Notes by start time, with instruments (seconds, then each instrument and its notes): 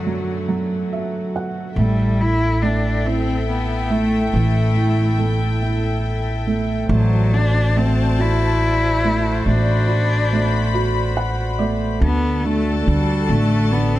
Already playing: string section F#2 D3 F#3 A3 F#4, felt piano F#3, cello F#3
0.07 felt piano F#3
0.48 felt piano F#3
0.93 felt piano E5
1.36 felt piano F#5
1.76 upright bass A1, cello G3, felt piano A3, string section E4 A4 E5 G5
2.21 cello E4, felt piano E4
2.62 felt piano A3, cello D4
3.04 cello C4, felt piano E4
3.49 cello B3
3.90 felt piano A3, cello A3
4.31 upright bass A1, felt piano E3, cello A3
4.75 felt piano E4
5.18 felt piano A3
5.62 felt piano E4
6.47 felt piano A3
6.89 upright bass A1, cello F#3, felt piano A3, string section F#4 C5 D5 A5
7.33 cello D4, felt piano F#4
7.76 felt piano A3, cello C4
8.18 cello E4, felt piano F#4
9.04 felt piano A3
9.46 upright bass A1, felt piano A3, cello D4, string section B5
9.88 felt piano F#4
10.32 felt piano A3
10.74 felt piano F#4
11.17 felt piano F#5
11.59 felt piano A3 D5
12.01 upright bass D2, felt piano D3, cello B3, string section F#4 A4 D5 A5
12.40 cello B3
12.45 felt piano D3, cello A3
12.80 cello A3
12.87 upright bass D2, felt piano D3, cello G3
13.29 upright bass A1, felt piano D3, cello A3
13.72 felt piano D3, cello B3
13.96 cello C4